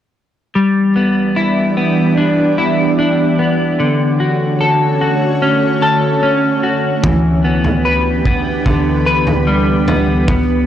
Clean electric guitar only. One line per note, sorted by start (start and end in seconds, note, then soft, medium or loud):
0.55 3.79 G3 medium
0.96 1.76 B3 soft
1.36 2.57 E4 soft
1.77 3.38 B3 soft
2.17 2.98 D4 medium
2.58 3.88 E4 medium
2.99 5.42 D4 medium
3.39 3.88 B3 soft
3.80 7.07 D3 medium
4.20 5.00 F#4 soft
4.61 5.81 A4 soft
5.01 6.62 F#4 soft
5.42 6.22 C#4 medium
5.82 7.12 A4 medium
6.23 7.12 C#4 medium
6.63 7.12 F#4 soft
7.04 10.28 E3 medium
7.44 8.26 B3 soft
7.85 9.06 B4 medium
8.26 9.87 B3 medium
8.66 10.28 D3 medium
9.06 10.66 B4 medium
9.47 10.36 G3 medium
9.88 10.28 B3 soft
10.28 10.66 B3 medium